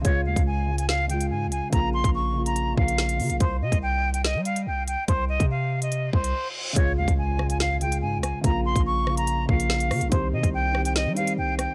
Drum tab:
HH |x--x---x--xx--x-|x--x---xx--x-xox|x--x---x--xx--x-|x--x---xx--x----|
SD |--------o-------|------------o---|--------o-------|----------------|
BD |o--o------------|o--o------o-----|o--o------------|o--o------o-----|

HH |x--x---x--xx--x-|x--x---xx--x-xox|x--x---x--xx--x-|
SD |------r-o-----r-|------r-----o-r-|------r-o-----r-|
BD |o--o------------|o--o------o-----|o--o------------|